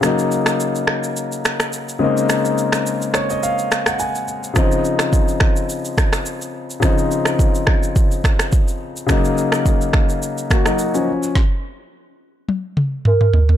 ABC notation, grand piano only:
X:1
M:4/4
L:1/16
Q:"Swing 16ths" 1/4=106
K:Ebdor
V:1 name="Grand piano"
z16 | z6 d e f3 g a4 | z16 | z16 |
z8 z2 [B,G] [G,E]2 [F,D]2 z | z16 |]
V:2 name="Grand piano"
[D,G,B,E]12- [D,G,B,E]2 [D,A,B,CE]2- | [D,A,B,CE]12- [D,A,B,CE]2 z2 | [D,F,CE]16 | [D,F,CE]16 |
[D,G,B,E]12- [D,G,B,E]2 z2 | z16 |]